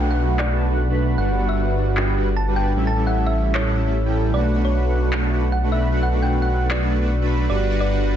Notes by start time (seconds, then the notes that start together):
Already playing: B1 A3 D4 F#4 G4 B4 F#5, downlifter
0.11 F#5
0.39 A3 D4 F#4 B4 D5 F#5, clap
0.50 A3 D4 F#4 B4 A5
0.70 A3 D4 F#4 B4 F#5
0.90 A3 D4 F#4 B4 B5
1.18 G1 G3 D4 F#4 B4 F#5
1.38 G3 D4 F#4 B4 F#5
1.49 E5
1.97 G3 D4 F#4 B4 G5, clap
2.17 G3 D4 F#4 B4 F#5
2.37 A5
2.47 G3 D4 F#4 B4 F#5
2.56 G3 D4 F#4 B4 G5 A5
2.76 A1 G3 C#4 E4 A4 E5
2.87 A5
2.96 G3 C#4 E4 A4 E5
3.07 F#5
3.27 E5
3.55 G3 C#4 E4 A4 C#5 E5, clap
3.66 G3 C#4 E4 A4 F#5
3.86 G3 C#4 E4 A4 E5
4.05 G3 C#4 E4 A4 G5
4.34 B1 A3 D4 F#4 B4 D5 F#5
4.54 A3 D4 F#4 B4 F#5
4.65 C#5
5.13 A3 D4 F#4 B4 A5, clap
5.33 A3 D4 F#4 B4 F#5
5.52 F#5
5.63 A3 D4 F#4 B4 F#5
5.72 A3 D4 F#4 B4 E5 B5
5.92 A3 D4 F#4 B4 F#5
6.03 F#5
6.11 A3 D4 F#4 B4 F#5
6.22 G5
6.42 F#5
6.71 A3 D4 F#4 B4 D5 F#5, clap
6.82 A3 D4 F#4 B4 A5
7.01 A3 D4 F#4 B4 F#5
7.21 A3 D4 F#4 B4 B5
7.50 G1 G3 D4 F#4 B4 D5 F#5, riser
7.69 G3 D4 F#4 B4 F#5
7.81 D5